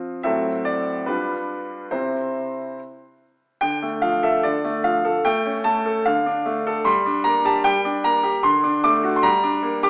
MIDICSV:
0, 0, Header, 1, 2, 480
1, 0, Start_track
1, 0, Key_signature, 0, "major"
1, 0, Tempo, 820793
1, 148, Time_signature, 2, 2, 24, 8
1, 630, Tempo, 851064
1, 2069, Key_signature, -1, "minor"
1, 2070, Tempo, 810811
1, 3990, Tempo, 792602
1, 5822, End_track
2, 0, Start_track
2, 0, Title_t, "Grand piano"
2, 0, Program_c, 0, 0
2, 0, Note_on_c, 0, 53, 44
2, 0, Note_on_c, 0, 60, 38
2, 0, Note_on_c, 0, 65, 45
2, 124, Note_off_c, 0, 53, 0
2, 124, Note_off_c, 0, 60, 0
2, 124, Note_off_c, 0, 65, 0
2, 137, Note_on_c, 0, 76, 73
2, 140, Note_on_c, 0, 45, 49
2, 140, Note_on_c, 0, 54, 42
2, 145, Note_on_c, 0, 60, 41
2, 148, Note_on_c, 0, 69, 44
2, 281, Control_c, 0, 64, 127
2, 380, Note_on_c, 0, 74, 63
2, 382, Note_off_c, 0, 76, 0
2, 603, Note_off_c, 0, 54, 0
2, 605, Note_off_c, 0, 60, 0
2, 607, Note_off_c, 0, 69, 0
2, 612, Note_off_c, 0, 45, 0
2, 621, Note_on_c, 0, 71, 58
2, 626, Note_off_c, 0, 74, 0
2, 626, Note_on_c, 0, 43, 44
2, 626, Note_on_c, 0, 55, 35
2, 626, Note_on_c, 0, 62, 37
2, 634, Note_on_c, 0, 65, 36
2, 635, Control_c, 0, 64, 0
2, 760, Control_c, 0, 64, 127
2, 1083, Note_off_c, 0, 55, 0
2, 1084, Note_off_c, 0, 62, 0
2, 1087, Note_off_c, 0, 65, 0
2, 1091, Note_off_c, 0, 43, 0
2, 1100, Note_on_c, 0, 72, 52
2, 1103, Note_off_c, 0, 71, 0
2, 1104, Note_on_c, 0, 64, 34
2, 1105, Note_on_c, 0, 48, 37
2, 1105, Note_on_c, 0, 60, 32
2, 1113, Control_c, 0, 64, 0
2, 1227, Control_c, 0, 64, 127
2, 1445, Note_off_c, 0, 48, 0
2, 1492, Note_off_c, 0, 64, 0
2, 1493, Note_off_c, 0, 60, 0
2, 1587, Note_off_c, 0, 72, 0
2, 1596, Control_c, 0, 64, 0
2, 2058, Note_on_c, 0, 79, 75
2, 2063, Note_on_c, 0, 50, 55
2, 2185, Note_on_c, 0, 57, 43
2, 2193, Control_c, 0, 64, 127
2, 2299, Note_on_c, 0, 77, 73
2, 2305, Note_off_c, 0, 79, 0
2, 2305, Note_on_c, 0, 53, 43
2, 2381, Note_off_c, 0, 57, 0
2, 2424, Note_on_c, 0, 69, 49
2, 2426, Note_off_c, 0, 77, 0
2, 2426, Note_on_c, 0, 76, 73
2, 2501, Note_off_c, 0, 53, 0
2, 2539, Note_off_c, 0, 50, 0
2, 2545, Note_on_c, 0, 74, 60
2, 2548, Note_on_c, 0, 50, 50
2, 2550, Note_off_c, 0, 76, 0
2, 2557, Control_c, 0, 64, 0
2, 2621, Note_off_c, 0, 69, 0
2, 2670, Note_on_c, 0, 57, 50
2, 2786, Note_on_c, 0, 77, 70
2, 2787, Note_on_c, 0, 53, 41
2, 2790, Note_off_c, 0, 74, 0
2, 2864, Note_off_c, 0, 57, 0
2, 2909, Note_on_c, 0, 69, 58
2, 2982, Note_off_c, 0, 53, 0
2, 3016, Note_off_c, 0, 50, 0
2, 3027, Note_on_c, 0, 79, 78
2, 3029, Note_off_c, 0, 77, 0
2, 3030, Note_off_c, 0, 69, 0
2, 3031, Note_on_c, 0, 57, 64
2, 3152, Note_on_c, 0, 61, 47
2, 3164, Control_c, 0, 64, 127
2, 3257, Note_off_c, 0, 57, 0
2, 3261, Note_on_c, 0, 81, 87
2, 3266, Note_on_c, 0, 57, 52
2, 3269, Note_off_c, 0, 79, 0
2, 3343, Note_off_c, 0, 61, 0
2, 3388, Note_on_c, 0, 69, 51
2, 3461, Note_off_c, 0, 57, 0
2, 3505, Note_on_c, 0, 77, 77
2, 3506, Note_off_c, 0, 81, 0
2, 3510, Note_off_c, 0, 69, 0
2, 3511, Note_on_c, 0, 50, 60
2, 3516, Control_c, 0, 64, 0
2, 3622, Control_c, 0, 64, 127
2, 3628, Note_on_c, 0, 62, 51
2, 3743, Note_on_c, 0, 57, 49
2, 3821, Note_off_c, 0, 62, 0
2, 3868, Note_on_c, 0, 69, 64
2, 3938, Note_off_c, 0, 57, 0
2, 3975, Note_off_c, 0, 50, 0
2, 3975, Note_on_c, 0, 84, 88
2, 3978, Note_on_c, 0, 55, 67
2, 3986, Note_off_c, 0, 77, 0
2, 3988, Note_off_c, 0, 69, 0
2, 3995, Control_c, 0, 64, 0
2, 4102, Note_on_c, 0, 62, 52
2, 4105, Control_c, 0, 64, 127
2, 4212, Note_on_c, 0, 82, 85
2, 4217, Note_on_c, 0, 58, 51
2, 4222, Note_off_c, 0, 84, 0
2, 4298, Note_off_c, 0, 62, 0
2, 4339, Note_on_c, 0, 67, 56
2, 4341, Note_off_c, 0, 82, 0
2, 4342, Note_on_c, 0, 81, 84
2, 4414, Note_off_c, 0, 58, 0
2, 4450, Note_off_c, 0, 55, 0
2, 4455, Note_on_c, 0, 79, 84
2, 4459, Note_on_c, 0, 55, 55
2, 4465, Note_off_c, 0, 81, 0
2, 4474, Control_c, 0, 64, 0
2, 4535, Note_off_c, 0, 67, 0
2, 4580, Note_on_c, 0, 62, 55
2, 4698, Note_on_c, 0, 82, 83
2, 4700, Note_off_c, 0, 79, 0
2, 4702, Note_on_c, 0, 58, 53
2, 4774, Note_off_c, 0, 62, 0
2, 4813, Note_on_c, 0, 67, 56
2, 4895, Note_off_c, 0, 58, 0
2, 4926, Note_off_c, 0, 55, 0
2, 4934, Note_on_c, 0, 84, 96
2, 4937, Note_on_c, 0, 50, 69
2, 4939, Note_off_c, 0, 67, 0
2, 4941, Note_off_c, 0, 82, 0
2, 5043, Control_c, 0, 64, 127
2, 5055, Note_on_c, 0, 62, 56
2, 5179, Note_off_c, 0, 84, 0
2, 5180, Note_on_c, 0, 86, 92
2, 5181, Note_on_c, 0, 57, 56
2, 5251, Note_off_c, 0, 62, 0
2, 5300, Note_on_c, 0, 66, 60
2, 5375, Note_off_c, 0, 57, 0
2, 5376, Note_on_c, 0, 84, 76
2, 5380, Note_off_c, 0, 86, 0
2, 5406, Note_off_c, 0, 50, 0
2, 5416, Note_on_c, 0, 82, 89
2, 5417, Note_on_c, 0, 55, 65
2, 5421, Note_off_c, 0, 84, 0
2, 5422, Note_off_c, 0, 66, 0
2, 5431, Control_c, 0, 64, 0
2, 5540, Note_on_c, 0, 62, 58
2, 5552, Control_c, 0, 64, 127
2, 5657, Note_on_c, 0, 58, 55
2, 5737, Note_off_c, 0, 62, 0
2, 5781, Note_on_c, 0, 67, 71
2, 5782, Note_on_c, 0, 86, 100
2, 5785, Note_off_c, 0, 82, 0
2, 5822, Note_off_c, 0, 55, 0
2, 5822, Note_off_c, 0, 58, 0
2, 5822, Note_off_c, 0, 67, 0
2, 5822, Note_off_c, 0, 86, 0
2, 5822, End_track
0, 0, End_of_file